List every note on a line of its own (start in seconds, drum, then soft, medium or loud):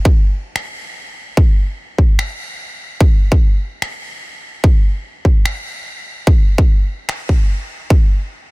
0.05 kick loud
0.56 finger snap medium
1.37 kick loud
1.98 kick medium
2.19 finger snap medium
3.00 kick loud
3.32 kick medium
3.82 finger snap medium
4.64 kick loud
5.25 kick medium
5.45 finger snap medium
6.27 kick loud
6.58 kick medium
7.09 finger snap medium
7.29 kick medium
7.90 kick loud